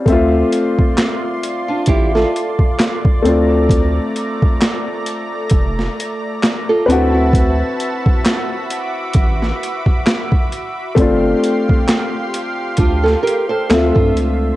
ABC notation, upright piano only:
X:1
M:4/4
L:1/8
Q:"Swing 16ths" 1/4=66
K:Dm
V:1 name="Upright piano"
[A,CFe]6- [A,CFe] [A,CDF]- | [A,CDF]6- [A,CDF] [CE^F=B]- | [CE^F=B]6- [CEFB] z | [A,CDF]6 [A,CFe]2 |]